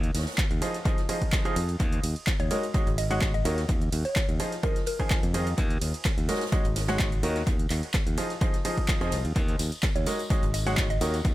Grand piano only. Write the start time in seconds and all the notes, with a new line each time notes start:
0.62 F3 D#4 F4 G#4 C5 D#5
0.85 F3 D#4 F4 G#4 C5 D#5
1.09 F3 D#4 F4 G#4 C5 D#5
1.45 F3 D#4 F4 G#4 C5 D#5
2.51 G#3 D#4 F#4 A#4 C#5 D#5
2.74 G#3 D#4 F#4 G#4 C#5 D#5
3.11 G#3 D#4 F#4 G#4 C#5 F#5
3.45 D#3 D#4 F#4 A#4 C#5 D#5
4.40 F3 D#4 F4 G#4 C5 D#5
4.63 F3 D#4 F4 G#4 C5 D#5
5.00 F3 D#4 F4 G#4 C5 G#5
5.34 D#3 D#4 F4 G#4 C5 D#5
6.29 G#3 D#4 F#4 A#4 C#5 D#5
6.52 G#3 D#4 F#4 G#4 C#5 D#5
6.89 G#3 D#4 F#4 G#4 C#5 F#5
7.23 D#3 D#4 F#4 A#4 C#5 D#5
8.18 F3 D#4 F4 G#4 C5 D#5
8.41 F3 D#4 F4 G#4 C5 D#5
8.65 F3 D#4 F4 G#4 C5 D#5
9.01 F3 D#4 F4 G#4 C5 D#5
10.07 G#3 D#4 F#4 A#4 C#5 D#5
10.30 G#3 D#4 F#4 G#4 C#5 D#5
10.67 G#3 D#4 F#4 G#4 C#5 F#5
11.01 D#3 D#4 F#4 A#4 C#5 D#5